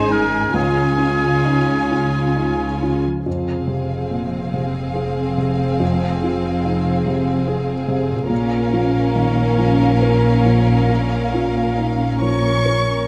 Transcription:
0.00 0.51 G#1 medium
0.00 0.50 G#2 medium
0.00 0.51 G#2 medium
0.00 0.58 G#2 medium
0.00 0.58 D#3 soft
0.00 0.58 C#4 soft
0.00 0.09 D#4 soft
0.00 0.30 D#4 soft
0.00 0.54 D#4 soft
0.00 0.52 G#4 medium
0.00 0.13 C5 medium
0.00 0.58 C5 soft
0.00 0.58 D#5 soft
0.00 0.51 G#5 medium
0.00 1.90 G#5 soft
0.09 0.54 D#4 soft
0.09 1.22 G#4 soft
0.09 0.55 A#4 medium
0.31 0.58 D#4 soft
0.53 3.22 C#2 soft
0.53 3.02 C#2 soft
0.53 3.29 C#3 soft
0.53 3.02 C#3 soft
0.53 3.01 C#4 soft
0.53 3.03 F4 soft
0.53 2.79 G#4 medium
0.53 3.01 G#5 soft
0.77 4.67 G#3 soft
0.98 1.72 F4 soft
0.98 3.02 F4 soft
1.23 2.81 G#4 soft
1.45 1.91 D#4 soft
1.45 3.30 C#5 soft
1.68 2.13 F5 soft
1.91 2.64 F4 soft
1.91 2.36 G#5 soft
2.36 2.82 D#4 soft
2.36 6.28 G#5 soft
2.60 6.50 F5 soft
2.82 3.26 F4 soft
2.82 3.15 G#4 soft
3.03 6.97 F3 soft
3.03 3.10 F4 soft
3.11 7.01 F4 soft
3.16 7.06 G#4 soft
3.20 7.10 C5 soft
3.25 8.26 F1 soft
3.25 8.26 F2 soft
3.25 5.77 F2 soft
3.25 8.26 C4 soft
3.25 8.27 G#4 soft
3.25 8.26 F5 soft
3.67 4.37 C3 soft
4.11 4.54 A#2 soft
4.53 5.22 C3 soft
4.95 5.64 G#4 soft
5.38 6.06 C3 soft
5.80 8.26 F2 soft
6.23 6.90 F4 soft
6.65 7.06 D#4 soft
7.06 7.72 C3 soft
7.47 8.14 G#4 soft
7.88 8.30 C3 soft
8.11 12.01 A#2 soft
8.16 12.06 F4 soft
8.21 12.11 A#4 soft
8.25 12.15 C#5 soft
8.29 13.07 A#1 medium
8.29 10.85 A#2 medium
8.29 13.07 A#2 soft
8.29 13.07 C#4 medium
8.29 13.07 A#4 medium
8.29 12.17 F5 medium
8.73 9.41 F3 soft
9.15 9.58 D#3 soft
9.59 10.28 F3 soft
10.02 10.72 A#4 soft
10.45 11.16 F3 soft
10.89 13.07 A#2 soft
11.34 12.04 F4 soft
11.77 12.21 D#4 soft
12.21 12.92 F3 soft
12.21 13.07 C#5 medium
12.21 13.06 C#6 medium
12.65 13.07 A#4 soft

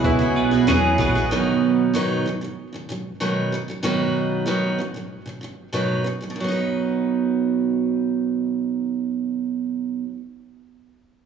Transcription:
0.00 0.36 C#2 medium
0.00 1.26 F#3 medium
0.00 1.87 F#3 medium
0.00 1.26 G#3 medium
0.00 0.21 B3 soft
0.00 0.36 B3 medium
0.00 1.28 C#4 medium
0.00 0.03 E4 medium
0.00 1.26 E4 medium
0.00 0.97 E4 medium
0.00 0.04 F#4 medium
0.00 0.19 F#4 medium
0.00 1.26 F#4 medium
0.00 0.97 F#4 medium
0.00 0.04 G#4 medium
0.00 0.18 G#4 medium
0.00 0.67 G#4 medium
0.00 0.05 B4 medium
0.00 1.32 F#5 medium
0.04 1.37 E4 medium
0.04 0.98 G#4 medium
0.04 0.98 B4 medium
0.04 0.98 E5 loud
0.04 kick loud
0.04 shaker medium
0.19 0.52 B3 medium
0.19 0.52 F#4 medium
0.19 0.50 G#4 medium
0.36 0.65 B1 medium
0.36 0.99 B3 medium
0.36 shaker medium
0.51 0.67 B3 soft
0.51 0.68 F#4 soft
0.51 0.67 G#4 medium
0.51 snare soft
0.51 shaker soft
0.67 0.97 E2 medium
0.67 0.99 E3 medium
0.67 0.97 F#3 medium
0.67 0.98 B3 medium
0.67 0.99 F#4 medium
0.67 1.37 G#4 medium
0.67 1.00 G#4 medium
0.67 snare loud
0.67 shaker medium
0.98 1.28 A#1 medium
0.98 1.14 F#3 medium
0.98 1.87 B3 medium
0.98 1.15 B3 medium
0.98 1.15 F#4 medium
0.98 1.14 G#4 medium
0.98 kick medium
0.98 shaker medium
1.15 1.31 B3 medium
1.15 1.32 F#4 medium
1.15 1.31 G#4 medium
1.15 shaker medium
1.31 1.92 B2 medium
1.31 1.94 D#3 medium
1.31 1.94 F#3 medium
1.31 1.95 B3 medium
1.31 1.95 D#4 medium
1.31 1.96 B4 medium
1.94 2.24 B2 medium
1.94 2.26 D#3 medium
1.94 2.26 F#3 medium
1.94 2.26 B3 medium
1.94 2.27 D#4 medium
1.94 2.27 B4 medium
2.26 2.40 B2 soft
2.26 2.41 D#3 medium
2.26 2.43 F#3 medium
2.41 2.67 B2 soft
2.41 2.67 D#3 soft
2.41 2.68 F#3 soft
2.73 2.88 B2 soft
2.73 2.89 D#3 soft
2.73 2.90 F#3 medium
2.89 3.14 B2 medium
2.89 3.15 D#3 medium
2.89 3.16 F#3 medium
3.20 3.51 B2 medium
3.20 3.52 D#3 medium
3.20 3.52 F#3 medium
3.20 3.53 B3 medium
3.20 3.53 D#4 medium
3.20 3.53 B4 medium
3.52 3.67 B2 medium
3.52 3.68 D#3 medium
3.52 3.70 F#3 medium
3.68 3.81 B2 soft
3.68 3.82 D#3 medium
3.68 3.83 F#3 medium
3.83 4.44 B2 medium
3.83 4.46 D#3 medium
3.83 4.47 F#3 medium
3.83 4.47 B3 medium
3.83 4.47 D#4 medium
3.83 4.48 B4 medium
4.46 4.77 B2 medium
4.46 4.79 D#3 medium
4.46 4.79 F#3 medium
4.46 4.79 B3 medium
4.46 4.79 D#4 medium
4.46 4.80 B4 medium
4.78 4.93 B2 medium
4.78 4.95 D#3 medium
4.78 4.96 F#3 medium
4.94 5.20 B2 soft
4.94 5.21 D#3 soft
4.94 5.21 F#3 soft
5.26 5.40 B2 soft
5.26 5.42 D#3 soft
5.26 5.43 F#3 soft
5.41 5.67 B2 medium
5.41 5.68 D#3 medium
5.41 5.69 F#3 medium
5.73 6.03 B2 medium
5.73 6.05 D#3 medium
5.73 6.06 F#3 medium
5.73 6.06 B3 medium
5.73 6.06 D#4 medium
5.73 6.06 B4 medium
6.04 6.19 B2 soft
6.04 6.21 D#3 medium
6.04 6.22 F#3 medium
6.21 6.29 B2 soft
6.21 6.34 D#3 soft
6.21 6.39 F#3 soft
6.30 10.03 B2 medium
6.36 10.08 D#3 medium
6.40 10.13 F#3 medium
6.40 10.17 B3 medium
6.48 10.21 D#4 medium
6.48 10.24 B4 medium

